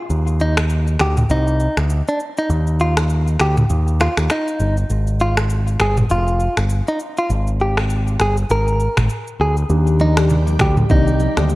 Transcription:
0.10 picked electric bass D#2, shaker
0.27 shaker
0.40 clean electric guitar D#4, shaker
0.57 finger snap, cross-stick, shaker
0.70 shaker
0.87 shaker
0.99 picked electric bass D2, clean electric guitar G4, finger snap, cross-stick, shaker
1.17 mid tom, shaker
1.30 picked electric bass C2, clean electric guitar D#4, shaker
1.47 shaker
1.60 shaker
1.77 picked electric bass D2, finger snap, cross-stick, shaker
1.90 shaker
2.08 clean electric guitar D4, shaker
2.20 shaker
2.37 clean electric guitar D#4, shaker
2.50 picked electric bass D#2, shaker
2.67 shaker
2.80 clean electric guitar F4, shaker
2.97 finger snap, cross-stick, shaker
3.10 shaker
3.27 shaker
3.40 picked electric bass D2, clean electric guitar G4, finger snap, cross-stick, shaker
3.57 mid tom, shaker
3.70 picked electric bass D#2, shaker
3.88 shaker
4.00 clean electric guitar F4, finger snap, cross-stick, shaker
4.17 picked electric bass D#2, finger snap, cross-stick, shaker
4.30 clean electric guitar D#4, finger snap, cross-stick, shaker
4.48 shaker
4.60 picked electric bass G1, shaker
4.77 shaker
4.90 picked electric bass G#1, shaker
5.07 shaker
5.20 clean electric guitar F4, shaker
5.37 finger snap, cross-stick, shaker
5.50 shaker
5.67 shaker
5.79 picked electric bass G1, clean electric guitar G#4, finger snap, cross-stick, shaker
5.97 mid tom, shaker
6.10 picked electric bass F1, clean electric guitar F4, shaker
6.27 shaker
6.40 shaker
6.57 picked electric bass G1, finger snap, cross-stick, shaker
6.70 shaker
6.88 clean electric guitar D#4, shaker
7.00 shaker
7.17 clean electric guitar F4, shaker
7.30 picked electric bass G#1, shaker
7.47 shaker
7.60 clean electric guitar G4, shaker
7.77 finger snap, cross-stick, shaker
7.90 shaker
8.07 shaker
8.20 picked electric bass G1, clean electric guitar G#4, finger snap, cross-stick, shaker
8.37 shaker
8.50 picked electric bass G#1, clean electric guitar A#4, shaker
8.67 shaker
8.80 shaker
8.97 picked electric bass G#1, finger snap, cross-stick, mid tom, shaker
9.10 shaker
9.28 shaker
9.40 picked electric bass D2, clean electric guitar G#4
9.57 shaker
9.69 picked electric bass D#2, tine electric piano D#3 A#3 D4 G4, ambient pad G3 G4 D5, shaker
9.87 shaker
10.00 clean electric guitar D#4, high conga, shaker
10.17 tine electric piano D#3 A#3 D4 G4, finger snap, cross-stick, shaker
10.29 low conga, shaker
10.47 high conga, shaker
10.59 picked electric bass D2, clean electric guitar G4, finger snap, kick, cross-stick, high conga, low conga, shaker
10.77 mid tom, high conga, shaker
10.89 picked electric bass C2, tine electric piano D#3 A#3 D4 G4, clean electric guitar D#4, kick, low conga, shaker
11.07 shaker
11.20 high conga, shaker
11.37 picked electric bass D2, tine electric piano D#3 A#3 D4 G4, finger snap, cross-stick, shaker
11.49 shaker

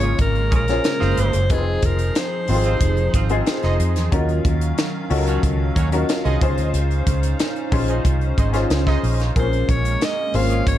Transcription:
Already playing: fingered electric bass G#1, analog synth pad C#3 G#3 A#3, grand piano A#3 C4 C#4 F4 G#4 A#4, alto saxophone C#5
0.01 horn section C#4 F4 G#4 C#5, closed hi-hat
0.19 fingered electric bass G#1, alto saxophone A#4, kick, closed hi-hat
0.35 closed hi-hat
0.51 fingered electric bass A#1, horn section C#4 F4 G#4 C#5, kick, closed hi-hat
0.56 alto saxophone A#4
0.68 grand piano C#4 F4 G#4 C5 C#5, snare, closed hi-hat
0.84 snare, closed hi-hat
1.00 fingered electric bass F#1, horn section C4 F4 G#4 C5, snare
1.17 fingered electric bass G1, alto saxophone C5, closed hi-hat
1.33 fingered electric bass F#1, closed hi-hat
1.50 fingered electric bass F1, analog synth pad F3 D#4 G#4, grand piano C4 D#4 F4 G#4 B4, alto saxophone G#4, kick, closed hi-hat
1.58 grand piano C5
1.82 fingered electric bass F1, alto saxophone A#4, kick, closed hi-hat
1.99 closed hi-hat
2.15 alto saxophone C5, snare, closed hi-hat
2.48 fingered electric bass G#1, grand piano C4 D#4 F4 G4 C5, open hi-hat
2.56 grand piano G#4
2.64 horn section C4 F4 G#4 C5, closed hi-hat
2.80 fingered electric bass F1, kick, closed hi-hat
2.97 closed hi-hat
3.14 fingered electric bass G#1, horn section C4 F4 G#4 C5, kick, closed hi-hat
3.29 grand piano C4 D#4 F4 G#4 C5, closed hi-hat
3.46 snare, closed hi-hat
3.62 fingered electric bass F1, horn section D#4 G#4 C5 D#5, snare, closed hi-hat
3.80 fingered electric bass F2, closed hi-hat
3.96 fingered electric bass E2, snare, closed hi-hat
4.12 fingered electric bass D#2, analog synth pad D#3 F#3 C#4 F5, grand piano C#4 D#4 F4 F#4 A#4, kick, closed hi-hat
4.29 closed hi-hat
4.45 fingered electric bass D#2, kick, closed hi-hat
4.61 closed hi-hat
4.78 snare, closed hi-hat
5.10 fingered electric bass C#2, grand piano C#4 D#4 F4 F#4 A4, open hi-hat
5.17 grand piano A#4
5.27 horn section C#4 F#4 A#4 C#5, closed hi-hat
5.43 fingered electric bass C#2, kick, closed hi-hat
5.76 fingered electric bass D#2, horn section C#4 F#4 A#4 C#5, kick, closed hi-hat
5.92 grand piano C#4 D#4 F4 F#4 A#4, closed hi-hat
6.09 snare, closed hi-hat
6.25 fingered electric bass C2, horn section D#4 G#4 C5 D#5, closed hi-hat
6.41 fingered electric bass C#2, analog synth pad C#4 D#4 C5, grand piano C#4 D#4 F4 G#4 C5, kick, closed hi-hat
6.58 fingered electric bass D2, closed hi-hat
6.74 fingered electric bass C#2, closed hi-hat
6.91 closed hi-hat
7.07 fingered electric bass C#2, kick, closed hi-hat
7.23 closed hi-hat
7.39 snare, closed hi-hat
7.56 closed hi-hat
7.72 fingered electric bass A#1, grand piano C#4 D#4 F4 G#4 C5, kick, open hi-hat
7.88 horn section D#4 G#4 C5 D#5, closed hi-hat
8.05 fingered electric bass C2, kick, closed hi-hat
8.21 closed hi-hat
8.38 fingered electric bass G#1, horn section D#4 G#4 C5 D#5, kick, closed hi-hat
8.53 grand piano C#4 D#4 F4 G#4 C5, snare, closed hi-hat
8.70 fingered electric bass C#2, snare, closed hi-hat
8.87 horn section D#4 G#4 C5 D#5, kick, snare
9.03 fingered electric bass A#1, open hi-hat
9.20 snare, closed hi-hat
9.35 fingered electric bass A#1, analog synth pad G#3 A#3 C#4, grand piano A#3 C4 F4 G#4 A#4, alto saxophone C5, kick, closed hi-hat
9.42 grand piano C#4
9.53 closed hi-hat
9.69 fingered electric bass A#1, alto saxophone C#5, kick, closed hi-hat
9.85 closed hi-hat
10.01 alto saxophone D#5, snare, closed hi-hat
10.34 fingered electric bass G#1, grand piano A#3 C4 F4 G#4 C5, alto saxophone F5, open hi-hat
10.41 grand piano C#4
10.50 horn section C#4 F4 G#4 C#5, closed hi-hat
10.67 fingered electric bass G#1, alto saxophone C#5, kick, closed hi-hat

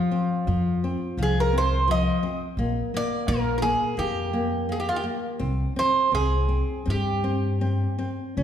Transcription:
Already playing: nylon-string guitar F3, bouzouki F4
0.11 nylon-string guitar C4
0.47 upright bass F2, nylon-string guitar F3
0.84 nylon-string guitar C4
1.17 upright bass C2, nylon-string guitar F3
1.23 bouzouki G#4
1.40 bouzouki A#4
1.53 nylon-string guitar C4
1.58 bouzouki C5
1.88 nylon-string guitar F3, bouzouki D#5
2.23 nylon-string guitar C4
2.57 upright bass A#1, nylon-string guitar A#3
2.94 nylon-string guitar A#3, bouzouki D5
3.28 upright bass A#1, nylon-string guitar A#3, bouzouki A#4
3.58 bouzouki A#4
3.62 nylon-string guitar A#3, bouzouki G#4
3.97 upright bass F2, nylon-string guitar A#3, bouzouki G4
4.33 nylon-string guitar A#3
4.69 nylon-string guitar A#3, bouzouki G#4
4.80 bouzouki G4
4.89 bouzouki F4
4.96 bouzouki G4
5.04 nylon-string guitar A#3
5.39 upright bass C2, nylon-string guitar C4
5.76 nylon-string guitar C4, bouzouki C5
6.12 upright bass C2, nylon-string guitar C4, bouzouki G#4
6.49 nylon-string guitar C4
6.85 upright bass G2, nylon-string guitar C4
6.90 bouzouki G4
7.24 nylon-string guitar C4
7.61 nylon-string guitar C4
7.99 nylon-string guitar C4
8.37 upright bass C#2, nylon-string guitar C#4

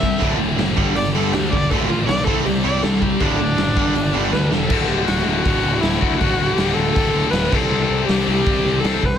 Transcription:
Already playing: picked electric bass C2, viola E5
0.01 distorted electric guitar C3 G3 C4, kick
0.20 picked electric bass D1, distorted electric guitar D2 A2 D3, kick, open hi-hat
0.39 picked electric bass D1, distorted electric guitar D2 A2 D3
0.57 picked electric bass F#1, distorted electric guitar D2 A2 D3, snare, open hi-hat
0.76 picked electric bass G1, distorted electric guitar G2 D3 G3, kick
0.94 picked electric bass G1, distorted electric guitar G2 D3 G3, viola D5, open hi-hat
1.13 picked electric bass G1, distorted electric guitar G2 D3 G3, viola A4
1.31 picked electric bass D2, distorted electric guitar G2 D3 G3, viola G4, snare, open hi-hat
1.50 picked electric bass E1, distorted electric guitar G2 D3 G3, viola D5, kick
1.70 picked electric bass D1, distorted electric guitar D2 A2 D3, viola A4, kick, open hi-hat
1.87 picked electric bass A1, distorted electric guitar D2 A2 D3, viola F4
2.05 picked electric bass B1, distorted electric guitar D2 A2 D3, viola D5, snare, open hi-hat
2.24 picked electric bass C2, distorted electric guitar C3 G3 C4, viola A4, kick
2.45 picked electric bass C2, distorted electric guitar C3 G3 C4, viola G4, open hi-hat
2.63 picked electric bass C2, distorted electric guitar C3 G3 C4, viola D5
2.83 picked electric bass C2, distorted electric guitar C3 G3 C4, viola A4, snare, open hi-hat
3.02 distorted electric guitar C3 G3 C4, viola G4, kick
3.20 picked electric bass D1, distorted electric guitar D2 A2 D3, viola D4, kick, open hi-hat
3.38 picked electric bass D1, distorted electric guitar D2 A2 D3
3.58 picked electric bass F#1, distorted electric guitar D2 A2 D3, snare, open hi-hat
3.77 picked electric bass G1, distorted electric guitar G2 D3 G3, kick
3.95 picked electric bass G1, distorted electric guitar G2 D3 G3, open hi-hat
4.14 picked electric bass G1, distorted electric guitar G2 D3 G3
4.32 picked electric bass D2, distorted electric guitar G2 D3 G3, viola B4, snare
4.52 picked electric bass E1, distorted electric guitar G2 D3 G3, viola A4, snare
4.70 picked electric bass D1, distorted electric guitar D2 A2 A3 F#4, kick, crash
4.75 distorted electric guitar D3
4.88 picked electric bass D1, viola G4
5.06 picked electric bass D1, viola F#4, snare, open hi-hat
5.26 picked electric bass D1
5.31 viola F#4
5.45 picked electric bass D1, distorted electric guitar D2 A2 D3, kick, open hi-hat
5.64 picked electric bass D1
5.81 picked electric bass D1, viola E4, snare, open hi-hat
6.01 picked electric bass D2, distorted electric guitar D2 A2 D3 A3 F#4, kick
6.06 viola E4
6.18 picked electric bass D1, distorted electric guitar D2 A3, viola F#4, kick, open hi-hat
6.22 distorted electric guitar A2 D3 F#4
6.39 picked electric bass D1
6.53 viola G4
6.58 picked electric bass D1, snare, open hi-hat
6.73 picked electric bass D1, viola A4
6.94 picked electric bass D1, distorted electric guitar D2 A2, kick, open hi-hat
6.98 distorted electric guitar D3
7.14 picked electric bass D1
7.30 picked electric bass D1, viola B4, snare, open hi-hat
7.52 picked electric bass C2, distorted electric guitar C3 G3 C4 E4 G4 C5, viola A4, kick, crash
7.70 picked electric bass C2
7.90 picked electric bass C2
8.05 picked electric bass C2, viola G4, open hi-hat
8.09 snare
8.27 picked electric bass C2, distorted electric guitar C3 G3 C4
8.32 viola G4
8.47 picked electric bass C2, kick, open hi-hat
8.65 picked electric bass C2
8.80 distorted electric guitar C3, viola A4
8.84 picked electric bass C2, distorted electric guitar G3 C4 E4 G4 C5, snare, open hi-hat
9.03 picked electric bass C2, viola B4, kick

